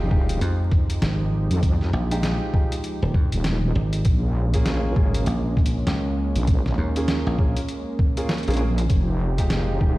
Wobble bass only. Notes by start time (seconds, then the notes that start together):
0.11 D#1
1.51 F2
3.33 D#1
4.05 A#1
4.66 A#1
4.96 G#1
6.36 A#1
8.48 A#1
8.90 F1
9.51 F1
9.81 D#1